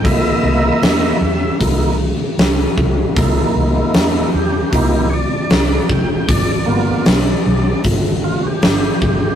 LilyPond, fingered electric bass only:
\new Staff \with { instrumentName = "Fingered electric bass" } { \clef bass \time 4/4 \key c \major \tempo 4 = 77 c,8 c,8 e,8 e,8 c,4 c,8 c,8 | c,8 c,8 e,8 e,8 c,4 c,8 f,,8 | g,,8 g,,8 b,,8 b,,8 g,,4 g,,8 g,,8 | }